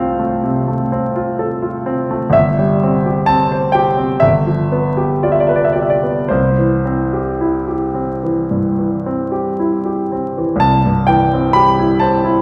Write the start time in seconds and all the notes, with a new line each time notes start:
Already playing: C2 A3 C4 F4 A4 C5 E5 F5 G5
0.19 A3
0.43 C3
0.68 A3
0.92 C4
1.16 F4
1.39 A4
1.62 F4
1.86 C4
2.11 A3
2.30 G1 E5
2.59 G3
2.83 C4
3.06 G4
3.26 C4 A5
3.52 C5
3.72 G4 G5
3.97 C4
4.20 G1 E5
4.47 F3
4.72 B3
4.97 G4
5.23 F4 D5
5.32 E5
5.40 D5
5.47 B4 E5
5.56 D5
5.65 E5
5.72 G4 D5
5.82 E5
5.90 D5
6.03 B3
6.28 C2 C5
6.58 E3
6.85 C4
7.13 G4
7.41 E4
7.68 G4
7.94 C4
8.23 E3
8.51 G2
8.79 E3
9.06 C4
9.32 G4
9.59 E4
9.85 G4
10.12 C4
10.38 E3
10.56 C2
10.60 A5
10.85 G2
11.07 E3 G5
11.33 C4
11.53 G4 B5
11.79 E4
12.00 C5 A5
12.24 E4